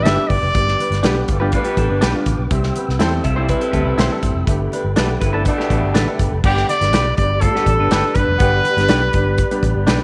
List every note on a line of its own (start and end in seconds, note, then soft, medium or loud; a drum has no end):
0.00 0.26 G3 loud
0.00 0.26 D4 loud
0.00 0.26 B4 loud
0.00 2.47 B4 medium
0.00 0.30 E5 medium
0.00 6.39 G5 medium
0.00 2.47 D6 medium
0.05 0.15 G1 loud
0.05 0.17 D4 medium
0.05 0.18 G4 medium
0.05 0.18 B4 medium
0.05 snare loud
0.05 closed hi-hat medium
0.05 high conga medium
0.17 0.40 G3 medium
0.17 0.40 B3 medium
0.17 0.41 D4 medium
0.17 0.40 G4 medium
0.28 0.40 G1 medium
0.28 1.28 D5 loud
0.28 kick medium
0.28 open hi-hat medium
0.28 high conga medium
0.43 0.52 F1 medium
0.54 0.74 G1 loud
0.54 0.85 G3 medium
0.54 0.85 B3 medium
0.54 0.85 D4 medium
0.54 0.85 G4 medium
0.54 kick loud
0.54 closed hi-hat medium
0.68 snare soft
0.79 1.00 G3 medium
0.79 0.99 D4 medium
0.79 0.99 B4 medium
0.79 closed hi-hat medium
0.79 muted conga soft
0.90 1.00 G1 medium
0.90 snare soft
0.90 closed hi-hat soft
1.02 1.22 B1 medium
1.02 1.23 D3 medium
1.02 1.27 G3 medium
1.02 1.23 B3 medium
1.02 1.27 B3 medium
1.02 1.15 D4 medium
1.02 1.27 D4 medium
1.02 1.23 G4 medium
1.02 1.16 G4 medium
1.02 1.27 G4 medium
1.02 1.16 B4 medium
1.02 snare loud
1.02 closed hi-hat medium
1.02 high conga medium
1.28 1.56 G1 medium
1.28 1.48 A3 medium
1.28 1.49 F4 medium
1.28 1.49 A4 medium
1.28 kick loud
1.28 closed hi-hat medium
1.28 low conga medium
1.40 1.64 G3 medium
1.40 1.64 B3 medium
1.40 1.64 D4 medium
1.40 1.50 D4 medium
1.40 1.64 F4 medium
1.40 1.50 G4 medium
1.40 1.49 B4 medium
1.52 2.23 G3 loud
1.52 1.66 A3 medium
1.52 2.23 D4 loud
1.52 1.65 F4 medium
1.52 2.23 B4 loud
1.52 kick medium
1.52 closed hi-hat medium
1.64 1.77 B3 medium
1.64 1.77 G4 medium
1.64 closed hi-hat medium
1.77 1.87 A1 medium
1.77 2.00 G3 medium
1.77 2.00 B3 medium
1.77 2.01 D4 medium
1.77 2.01 G4 medium
1.77 1.89 A4 medium
1.77 kick medium
1.77 closed hi-hat medium
1.77 muted conga medium
1.89 1.99 G1 medium
1.89 2.48 D4 medium
1.89 2.48 B4 medium
2.01 2.12 B1 loud
2.01 2.13 D4 medium
2.01 2.14 G4 medium
2.01 2.14 B4 medium
2.01 snare loud
2.01 closed hi-hat medium
2.01 high conga medium
2.15 2.37 G3 medium
2.15 2.38 B3 medium
2.15 2.38 D4 medium
2.15 2.38 F4 medium
2.26 2.36 A1 medium
2.26 kick medium
2.26 closed hi-hat medium
2.26 high conga medium
2.39 2.48 B1 medium
2.51 2.70 C2 loud
2.51 2.82 G3 medium
2.51 2.82 C4 medium
2.51 4.46 C4 medium
2.51 2.82 E4 medium
2.51 2.82 G4 medium
2.51 4.45 E6 medium
2.51 kick loud
2.51 closed hi-hat medium
2.63 snare soft
2.75 2.96 B3 medium
2.75 2.96 G4 medium
2.75 2.96 B4 medium
2.75 closed hi-hat medium
2.75 muted conga soft
2.89 2.98 C2 medium
2.89 snare soft
2.99 3.19 E2 medium
2.99 3.20 E3 medium
2.99 3.23 G3 medium
2.99 3.20 C4 medium
2.99 3.23 C4 medium
2.99 3.11 E4 medium
2.99 3.23 E4 medium
2.99 3.20 G4 medium
2.99 3.12 G4 medium
2.99 3.23 A4 medium
2.99 3.12 C5 medium
2.99 snare loud
2.99 closed hi-hat medium
2.99 high conga medium
3.24 3.53 C2 medium
3.24 3.45 A3 medium
3.24 3.44 F4 medium
3.24 3.37 G4 medium
3.24 3.44 A4 medium
3.24 3.36 E5 medium
3.24 kick medium
3.24 closed hi-hat medium
3.36 3.60 G3 medium
3.36 3.60 C4 medium
3.36 3.61 E4 medium
3.36 3.47 E4 soft
3.36 3.60 E4 medium
3.36 3.46 G4 medium
3.36 3.60 G4 loud
3.36 3.46 C5 medium
3.36 3.60 C5 medium
3.49 4.19 G3 loud
3.49 4.19 E4 loud
3.49 4.19 B4 loud
3.49 kick medium
3.49 closed hi-hat medium
3.61 3.73 C4 medium
3.61 3.72 A4 medium
3.61 closed hi-hat soft
3.72 3.83 D2 medium
3.72 3.96 G3 medium
3.72 3.85 B3 medium
3.72 3.97 C4 medium
3.72 3.96 E4 medium
3.72 3.85 G4 medium
3.72 3.97 A4 medium
3.72 kick medium
3.72 closed hi-hat medium
3.72 muted conga soft
3.85 3.95 C2 medium
3.85 4.56 G3 medium
3.85 4.55 E4 medium
3.97 4.07 B1 medium
3.97 4.10 E4 medium
3.97 4.10 G4 medium
3.97 4.11 C5 medium
3.97 snare loud
3.97 closed hi-hat medium
3.97 high conga medium
4.11 4.34 G3 medium
4.11 4.34 C4 medium
4.11 4.34 E4 medium
4.11 4.34 A4 medium
4.23 4.32 G1 medium
4.23 kick medium
4.23 closed hi-hat medium
4.23 high conga medium
4.35 4.44 F1 medium
4.46 4.66 G1 loud
4.46 4.78 A3 medium
4.46 4.78 B3 medium
4.46 4.78 D4 medium
4.46 4.79 G4 medium
4.46 6.41 A4 medium
4.46 6.41 B5 medium
4.46 kick loud
4.46 closed hi-hat medium
4.72 4.92 G3 medium
4.72 4.92 D4 medium
4.72 4.92 B4 medium
4.72 closed hi-hat medium
4.72 muted conga soft
4.84 4.94 G1 medium
4.96 5.15 B1 medium
4.96 5.17 D3 medium
4.96 5.20 A3 medium
4.96 5.16 B3 medium
4.96 5.20 B3 medium
4.96 5.08 D4 medium
4.96 5.20 D4 medium
4.96 5.16 G4 medium
4.96 5.20 G4 medium
4.96 5.08 A4 medium
4.96 5.09 B4 medium
4.96 snare loud
4.96 closed hi-hat medium
4.96 high conga medium
5.21 5.49 G1 medium
5.21 5.41 E3 medium
5.21 5.42 C4 medium
5.21 5.33 D4 medium
5.21 5.42 E4 medium
5.21 5.32 B4 medium
5.21 kick loud
5.21 closed hi-hat medium
5.21 low conga medium
5.33 5.56 A3 medium
5.33 5.56 B3 medium
5.33 5.56 D4 medium
5.33 5.43 D4 soft
5.33 5.56 E4 medium
5.33 5.57 A4 medium
5.33 5.43 A4 medium
5.33 5.42 B4 medium
5.45 6.15 B2 loud
5.45 6.16 A3 loud
5.45 6.15 D4 loud
5.45 kick medium
5.45 closed hi-hat medium
5.58 6.29 B3 medium
5.58 6.28 G4 medium
5.58 snare soft
5.70 5.80 A1 medium
5.70 5.93 A3 medium
5.70 5.93 B3 medium
5.70 5.93 D4 medium
5.70 5.93 A4 medium
5.70 kick medium
5.70 closed hi-hat medium
5.70 muted conga medium
5.82 5.92 G1 medium
5.94 6.04 A1 medium
5.94 6.06 D4 medium
5.94 6.06 A4 medium
5.94 6.07 B4 medium
5.94 snare loud
5.94 closed hi-hat medium
5.94 high conga medium
6.07 6.30 A3 medium
6.07 6.30 B3 medium
6.07 6.30 D4 medium
6.07 6.30 A4 medium
6.19 6.29 G1 medium
6.19 kick medium
6.19 closed hi-hat medium
6.19 high conga medium
6.32 6.41 F1 medium
6.43 6.63 G1 loud
6.43 6.79 D3 medium
6.43 6.67 G3 medium
6.43 6.79 B3 medium
6.43 6.67 B3 medium
6.43 6.67 D4 medium
6.43 6.79 G4 loud
6.43 10.04 G4 medium
6.43 6.67 G4 medium
6.43 6.68 G4 loud
6.43 10.04 D5 medium
6.43 10.04 B5 medium
6.43 kick loud
6.43 crash medium
6.57 snare soft
6.69 7.14 D5 loud
6.69 closed hi-hat medium
6.69 muted conga soft
6.80 6.93 G1 medium
6.80 7.03 G3 medium
6.80 7.03 B3 medium
6.80 7.04 D4 medium
6.80 7.04 G4 medium
6.80 snare soft
6.80 closed hi-hat soft
6.93 7.11 B1 medium
6.93 7.04 D4 medium
6.93 7.05 G4 medium
6.93 7.05 B4 medium
6.93 snare loud
6.93 closed hi-hat medium
6.93 high conga medium
7.17 7.46 G1 medium
7.17 7.40 G3 medium
7.17 7.40 B3 medium
7.17 7.41 D4 medium
7.17 7.40 G4 medium
7.17 7.43 D5 loud
7.17 kick medium
7.17 closed hi-hat medium
7.41 7.54 A3 medium
7.41 7.54 F4 medium
7.41 8.16 A4 loud
7.41 kick medium
7.41 closed hi-hat medium
7.41 muted conga soft
7.41 low conga medium
7.55 7.92 G3 medium
7.55 7.92 B3 medium
7.55 7.67 B3 medium
7.55 7.93 D4 medium
7.55 7.61 F#4 medium
7.55 7.66 G4 medium
7.55 snare soft
7.61 7.96 G4 medium
7.66 7.76 A1 medium
7.66 7.79 A4 medium
7.66 kick medium
7.66 closed hi-hat medium
7.66 muted conga medium
7.79 7.88 G1 medium
7.79 8.38 D4 medium
7.79 8.38 B4 medium
7.91 8.00 G1 medium
7.91 8.03 D4 medium
7.91 8.03 G4 medium
7.91 8.04 B4 medium
7.91 snare loud
7.91 closed hi-hat medium
7.91 high conga medium
8.15 8.25 G1 medium
8.15 8.31 G3 medium
8.15 8.31 B3 medium
8.15 8.31 D4 medium
8.15 8.31 G4 medium
8.15 10.04 B4 loud
8.15 kick medium
8.15 closed hi-hat medium
8.15 high conga medium
8.28 8.37 F1 medium
8.39 8.59 G1 loud
8.39 8.75 D3 medium
8.39 8.64 G3 medium
8.39 8.74 B3 medium
8.39 8.64 B3 medium
8.39 8.64 D4 medium
8.39 8.75 G4 medium
8.39 8.64 G4 medium
8.39 kick loud
8.39 closed hi-hat medium
8.64 closed hi-hat medium
8.64 muted conga soft
8.77 8.86 G1 medium
8.77 9.00 G3 medium
8.77 9.00 B3 medium
8.77 9.00 D4 medium
8.77 9.00 G4 medium
8.77 snare soft
8.77 closed hi-hat soft
8.88 9.08 B1 medium
8.88 9.00 D4 medium
8.88 9.01 G4 medium
8.88 9.01 B4 medium
8.88 snare loud
8.88 closed hi-hat medium
8.88 high conga medium
9.13 9.42 G1 medium
9.13 9.37 G3 medium
9.13 9.37 B3 medium
9.13 9.37 D4 medium
9.13 9.37 G4 medium
9.13 kick medium
9.13 closed hi-hat medium
9.38 kick medium
9.38 closed hi-hat medium
9.51 9.89 G3 medium
9.51 9.89 B3 medium
9.51 9.89 D4 medium
9.51 9.89 G4 medium
9.51 closed hi-hat medium
9.63 9.72 A1 medium
9.63 kick medium
9.63 closed hi-hat medium
9.63 muted conga soft
9.75 9.84 G1 medium
9.86 9.97 B1 loud
9.86 9.98 D4 medium
9.86 9.99 G4 medium
9.86 9.99 B4 medium
9.86 snare loud
9.86 closed hi-hat medium
9.86 high conga medium